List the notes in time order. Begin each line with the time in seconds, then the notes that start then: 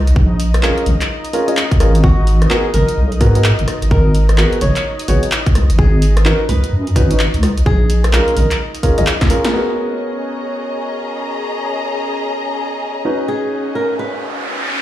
Already playing: D#4 D#5
0.07 A#1, closed hi-hat
0.16 kick
0.40 open hi-hat
0.54 cross-stick, closed hi-hat
0.63 C#4 F4 G#4 A#4, clap
0.78 closed hi-hat
0.86 A#1, open hi-hat
1.01 clap, closed hi-hat
1.25 open hi-hat
1.33 C#4 F4 G#4 A#4, open hi-hat
1.48 C#4 F4 G#4 D#5, closed hi-hat
1.57 clap
1.71 kick, closed hi-hat
1.80 G#1 C#4 F4 G#4 A#4, cross-stick, open hi-hat
1.95 closed hi-hat
2.04 F#4, kick
2.27 open hi-hat
2.42 cross-stick, closed hi-hat
2.50 B3 F#4 G#4 A#4, clap
2.74 G#1 A#4, open hi-hat
2.89 closed hi-hat
2.97 B1
3.12 closed hi-hat
3.21 G#2 B3 F#4 G#4 A#4, kick, open hi-hat
3.35 B3 F#4 G#4 A#4, closed hi-hat
3.44 clap
3.59 G#1, closed hi-hat
3.68 cross-stick, open hi-hat
3.82 G#1, closed hi-hat
3.91 A#4, kick
4.15 open hi-hat
4.29 cross-stick, closed hi-hat
4.38 B3 F#4 G#4 A#4 B4, clap
4.53 closed hi-hat
4.61 G#1 C#5, open hi-hat
4.76 clap, closed hi-hat
4.99 open hi-hat
5.08 G#1 B3 F#4 G#4 C#5, open hi-hat
5.23 closed hi-hat
5.32 clap
5.46 kick, closed hi-hat
5.55 C#2, cross-stick, open hi-hat
5.70 G#1, closed hi-hat
5.79 G#4, kick
6.02 open hi-hat
6.17 cross-stick, closed hi-hat
6.25 C#4 D#4 F#4 A#4 B4, clap
6.49 C#2 B4, open hi-hat
6.64 closed hi-hat
6.73 F#2
6.87 closed hi-hat
6.96 G#1 C#4 D#4 F#4 B4, kick, open hi-hat
7.11 C#4 D#4 F#4 B4, closed hi-hat
7.19 clap
7.34 C#2, closed hi-hat
7.43 cross-stick, open hi-hat
7.58 A#1, closed hi-hat
7.66 G#4, kick
7.90 open hi-hat
8.04 cross-stick, closed hi-hat
8.13 C#4 F4 G#4 A#4, clap
8.28 closed hi-hat
8.36 A#1 A#4, open hi-hat
8.51 clap, closed hi-hat
8.75 open hi-hat
8.83 C#4 F4 G#4 A#4, kick, open hi-hat
8.98 A#1 C#4 F4 G#4 D#5, closed hi-hat
9.07 clap
9.21 kick, snare, closed hi-hat
9.30 C#4 F4 G#4 A#4, open hi-hat
9.45 snare, closed hi-hat
9.53 B3 C#4 F#4 G#4 A#4 C#5
9.73 D#5
10.17 A#5
13.05 C#4 D#4 F#4 B4
13.28 G#4, riser
13.75 A#4
13.99 B4